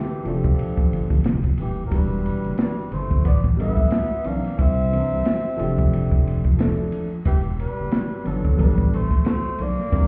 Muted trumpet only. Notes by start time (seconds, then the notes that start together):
Already playing: G4
0.28 A4
1.60 G4
1.86 A#4
1.94 B4
2.60 B4
2.93 C5
3.27 D5
3.60 E5
4.27 F5
4.60 E5
7.27 G4
7.61 B4
8.28 A4
8.62 B4
8.96 C5
9.29 C5
9.62 D5